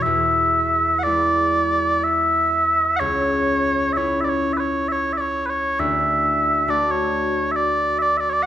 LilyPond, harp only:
\new Staff \with { instrumentName = "Harp" } { \time 3/4 \key e \mixolydian \tempo 4 = 64 e,4 <gis b e'>2 | cis,4 <b cis' e'>2 | d,4 <a d' fis'>2 | }